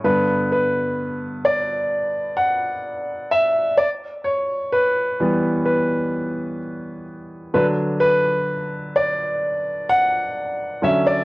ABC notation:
X:1
M:4/4
L:1/16
Q:1/4=64
K:Bm
V:1 name="Grand piano"
B2 B4 d4 f4 e2 | d2 c2 B4 B6 z2 | B2 B4 d4 f4 e d |]
V:2 name="Grand piano" clef=bass
[G,,D,B,]6 z8 z2 | z6 [E,G,B,]6 z4 | [D,F,D]12- [D,F,D]2 [D,F,C]2 |]